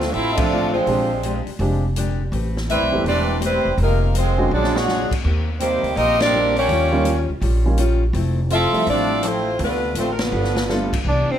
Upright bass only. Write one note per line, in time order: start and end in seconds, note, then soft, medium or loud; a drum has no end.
0.00 0.11 D2 medium
0.14 0.83 A1 medium
0.86 1.43 A#1 medium
1.47 muted upright bass stroke soft
1.59 2.28 F1 medium
2.32 2.77 A1 medium
2.81 2.92 B1 medium
2.92 3.04 G#1 medium
3.04 3.61 E1 medium
3.65 3.77 E1 medium
3.77 4.47 F1 loud
4.51 5.07 A#1 medium
5.12 muted upright bass stroke soft
5.24 5.80 D#2 medium
5.83 5.95 D2 medium
5.96 6.65 A#1 medium
6.69 7.25 D#2 medium
7.29 7.40 C#2 medium
7.42 8.10 A#1 medium
8.13 8.70 F1 loud
8.73 muted upright bass stroke soft
8.87 9.56 A1 medium
9.59 9.93 D2 loud
9.95 10.29 A1 medium
10.32 11.01 G1 medium
11.05 11.27 C2 medium
11.29 muted upright bass stroke soft